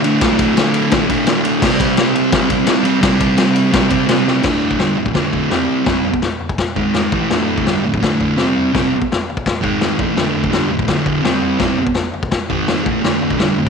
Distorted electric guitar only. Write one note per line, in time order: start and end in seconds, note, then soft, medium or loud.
0.00 0.21 D2 medium
0.00 0.22 D3 medium
0.06 0.21 A2 medium
0.22 0.54 D2 loud
0.22 0.56 A2 loud
0.22 0.57 D3 loud
0.55 0.90 D2 medium
0.55 0.92 A2 medium
0.55 0.93 D3 medium
0.91 1.27 D2 loud
0.91 1.11 A2 medium
0.91 1.08 D3 loud
1.09 1.27 A2 medium
1.09 1.29 D3 medium
1.28 1.61 D2 medium
1.28 1.46 A2 medium
1.28 1.42 D3 medium
1.44 1.62 A2 medium
1.44 1.61 D3 medium
1.62 1.98 C3 loud
1.62 1.99 G3 loud
1.62 2.00 C4 loud
1.98 2.30 C3 medium
1.98 2.33 G3 medium
1.98 2.33 C4 medium
2.31 2.64 C3 loud
2.31 2.51 G3 loud
2.31 2.48 C4 loud
2.49 2.66 G3 medium
2.49 2.67 C4 medium
2.65 2.99 C3 medium
2.65 2.85 G3 medium
2.65 2.82 C4 medium
2.83 3.00 G3 medium
2.83 3.01 C4 medium
3.00 3.35 C3 loud
3.00 3.38 G3 loud
3.00 3.38 C4 loud
3.37 3.70 C3 medium
3.37 3.72 G3 medium
3.37 3.73 C4 medium
3.71 4.06 C3 medium
3.71 3.90 G3 loud
3.71 3.87 C4 loud
3.89 4.08 G3 medium
3.89 4.09 C4 medium
4.07 4.42 C3 medium
4.07 4.26 G3 medium
4.07 4.23 C4 medium
4.24 4.42 G3 medium
4.24 4.43 C4 medium
4.42 4.78 D2 medium
4.42 4.79 A2 medium
4.42 4.79 D3 medium
4.78 4.97 G2 medium
4.78 4.97 D3 medium
4.78 4.98 G3 medium
4.97 5.13 D2 medium
4.97 5.12 A2 medium
5.14 5.50 D2 medium
5.14 5.51 A2 loud
5.14 5.51 D3 loud
5.50 5.85 C3 medium
5.50 5.86 G3 medium
5.50 5.86 C4 medium
5.86 6.04 C3 loud
5.86 6.05 G3 loud
5.86 6.05 C4 loud
6.76 7.12 G#2 medium
6.76 7.12 D#3 medium
6.76 7.13 G#3 loud
7.13 7.30 A2 medium
7.13 7.30 E3 medium
7.13 7.31 A3 medium
7.31 7.66 D2 medium
7.31 7.66 A2 loud
7.31 7.66 D3 loud
7.67 7.84 G2 medium
7.67 7.84 D3 medium
7.67 7.85 G3 medium
7.84 7.99 D2 medium
7.84 7.99 A2 medium
8.01 8.37 D2 loud
8.01 8.37 A2 loud
8.01 8.37 D3 medium
8.37 8.71 C3 medium
8.37 8.72 G3 medium
8.37 8.72 C4 loud
8.73 8.91 C3 medium
8.73 8.91 G3 medium
8.73 8.91 C4 loud
9.62 9.98 G#2 medium
9.62 9.98 D#3 loud
9.62 9.99 G#3 loud
9.98 10.15 A2 medium
9.98 10.16 E3 medium
9.98 10.17 A3 loud
10.16 10.50 D2 loud
10.16 10.52 A2 medium
10.16 10.51 D3 loud
10.51 10.69 G2 medium
10.51 10.70 D3 medium
10.51 10.70 G3 medium
10.70 10.85 D2 medium
10.70 10.85 A2 medium
10.87 11.22 D2 medium
10.87 11.23 A2 medium
10.87 11.23 D3 medium
11.22 11.58 C3 medium
11.22 11.58 G3 medium
11.22 11.59 C4 medium
11.59 11.77 C3 loud
11.59 11.77 G3 loud
11.59 11.78 C4 loud
12.50 12.84 G#2 medium
12.50 12.84 D#3 loud
12.50 12.85 G#3 loud
12.84 13.01 A2 medium
12.84 13.02 E3 medium
12.84 13.03 A3 loud
13.02 13.38 D2 medium
13.02 13.38 A2 loud
13.02 13.38 D3 loud
13.39 13.56 G2 medium
13.39 13.57 D3 medium
13.39 13.57 G3 loud
13.59 13.69 D2 medium
13.59 13.69 A2 medium